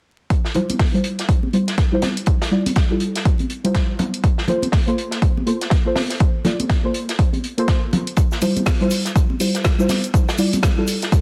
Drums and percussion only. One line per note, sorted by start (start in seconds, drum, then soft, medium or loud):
0.30 kick loud
0.30 closed hi-hat medium
0.45 snare soft
0.54 closed hi-hat medium
0.54 low conga medium
0.70 closed hi-hat medium
0.70 high conga medium
0.79 kick loud
0.79 snare loud
0.79 closed hi-hat soft
0.79 open hi-hat medium
0.95 closed hi-hat soft
1.04 closed hi-hat medium
1.19 snare soft
1.19 closed hi-hat medium
1.29 kick loud
1.29 closed hi-hat medium
1.43 high conga medium
1.53 closed hi-hat medium
1.68 snare soft
1.68 closed hi-hat medium
1.78 kick loud
1.78 snare medium
1.78 closed hi-hat medium
2.02 snare medium
2.02 closed hi-hat medium
2.02 high conga medium
2.17 closed hi-hat medium
2.26 kick loud
2.26 closed hi-hat medium
2.42 snare loud
2.42 closed hi-hat medium
2.66 closed hi-hat medium
2.66 high conga medium
2.76 kick loud
2.76 snare loud
2.76 closed hi-hat medium
3.00 closed hi-hat medium
3.15 snare medium
3.15 closed hi-hat medium
3.25 kick loud
3.25 closed hi-hat medium
3.39 closed hi-hat soft
3.39 high conga medium
3.50 closed hi-hat medium
3.65 closed hi-hat medium
3.75 kick loud
3.75 snare loud
3.75 closed hi-hat medium
3.99 closed hi-hat medium
3.99 high conga medium
3.99 low conga medium
4.14 closed hi-hat medium
4.24 kick loud
4.24 closed hi-hat soft
4.24 closed hi-hat medium
4.38 snare soft
4.48 closed hi-hat medium
4.48 low conga medium
4.62 closed hi-hat medium
4.62 high conga medium
4.72 kick loud
4.72 snare loud
4.72 closed hi-hat soft
4.72 open hi-hat medium
4.88 closed hi-hat soft
4.98 closed hi-hat medium
5.11 snare soft
5.11 closed hi-hat medium
5.22 kick loud
5.22 closed hi-hat medium
5.22 closed hi-hat soft
5.37 high conga medium
5.47 closed hi-hat medium
5.61 snare soft
5.61 closed hi-hat medium
5.70 kick loud
5.70 snare loud
5.70 closed hi-hat soft
5.70 closed hi-hat medium
5.96 snare medium
5.96 open hi-hat medium
5.96 high conga medium
6.10 snare soft
6.10 closed hi-hat medium
6.20 kick loud
6.20 closed hi-hat medium
6.20 closed hi-hat soft
6.45 snare soft
6.45 closed hi-hat medium
6.45 low conga medium
6.60 closed hi-hat medium
6.60 high conga medium
6.69 kick loud
6.69 snare loud
6.69 closed hi-hat soft
6.69 closed hi-hat medium
6.94 closed hi-hat medium
7.09 snare medium
7.09 closed hi-hat medium
7.19 kick loud
7.19 closed hi-hat soft
7.19 closed hi-hat medium
7.33 closed hi-hat soft
7.33 high conga medium
7.44 closed hi-hat medium
7.58 closed hi-hat medium
7.68 kick loud
7.68 snare loud
7.68 closed hi-hat soft
7.68 closed hi-hat medium
7.93 closed hi-hat medium
7.93 high conga medium
7.93 low conga medium
8.07 closed hi-hat medium
8.17 kick loud
8.17 closed hi-hat medium
8.17 closed hi-hat soft
8.17 shaker soft
8.32 snare soft
8.32 shaker soft
8.42 closed hi-hat medium
8.42 open hi-hat loud
8.42 low conga medium
8.42 shaker medium
8.56 closed hi-hat medium
8.56 high conga medium
8.56 shaker soft
8.66 kick loud
8.66 snare loud
8.66 closed hi-hat soft
8.66 open hi-hat medium
8.66 shaker soft
8.80 closed hi-hat soft
8.91 closed hi-hat medium
8.91 open hi-hat medium
8.91 shaker medium
9.05 snare soft
9.05 closed hi-hat medium
9.05 shaker soft
9.15 kick loud
9.15 closed hi-hat medium
9.15 closed hi-hat soft
9.15 shaker soft
9.30 high conga medium
9.40 closed hi-hat medium
9.40 open hi-hat loud
9.40 shaker medium
9.55 snare soft
9.55 closed hi-hat medium
9.55 shaker soft
9.64 kick loud
9.64 snare loud
9.64 closed hi-hat medium
9.64 shaker medium
9.80 shaker soft
9.89 snare loud
9.89 closed hi-hat medium
9.89 open hi-hat medium
9.89 high conga medium
9.89 shaker medium
10.04 closed hi-hat medium
10.04 shaker soft
10.14 kick loud
10.14 closed hi-hat medium
10.14 shaker medium
10.29 snare medium
10.29 closed hi-hat medium
10.29 shaker soft
10.38 open hi-hat medium
10.38 shaker medium
10.53 closed hi-hat medium
10.53 high conga medium
10.53 shaker soft
10.63 kick loud
10.63 snare loud
10.63 closed hi-hat medium
10.63 shaker medium
10.88 closed hi-hat medium
10.88 open hi-hat medium
10.88 shaker medium
11.02 snare medium
11.02 closed hi-hat medium
11.02 shaker soft
11.12 kick loud
11.12 closed hi-hat medium
11.12 shaker soft